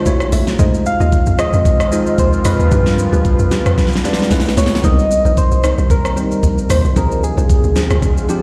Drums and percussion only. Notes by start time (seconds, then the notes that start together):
0.06 kick, shaker
0.20 cross-stick, shaker
0.32 open hi-hat, shaker
0.47 snare, shaker
0.59 kick, shaker
0.74 shaker
0.86 shaker
1.01 shaker
1.12 kick, shaker
1.26 shaker
1.39 cross-stick, shaker
1.53 shaker
1.65 kick, shaker
1.80 cross-stick, shaker
1.92 shaker
2.07 shaker
2.18 kick, shaker
2.33 shaker
2.45 cross-stick, open hi-hat, shaker
2.60 shaker
2.71 kick, shaker
2.86 snare, shaker
2.99 shaker
3.13 shaker
3.25 kick, shaker
3.39 shaker
3.51 snare, shaker
3.66 cross-stick, shaker
3.78 kick, snare, shaker
3.87 snare
3.93 snare, shaker
4.04 snare, shaker
4.13 snare
4.19 snare, shaker
4.31 kick, snare, shaker
4.40 snare
4.46 snare, shaker
4.57 snare, shaker
4.66 snare
4.75 snare
4.84 kick, shaker
4.99 shaker
5.11 shaker
5.26 shaker
5.37 kick, shaker
5.51 shaker
5.64 cross-stick, shaker
5.78 shaker
5.90 kick, shaker
6.05 cross-stick, shaker
6.17 shaker
6.31 shaker
6.43 kick, shaker
6.58 shaker
6.70 cross-stick, open hi-hat, shaker
6.85 shaker
6.96 kick, shaker
7.12 shaker
7.23 shaker
7.38 shaker
7.50 kick, shaker
7.64 shaker
7.76 snare, shaker
7.90 cross-stick, shaker
8.02 kick, shaker
8.17 shaker
8.29 shaker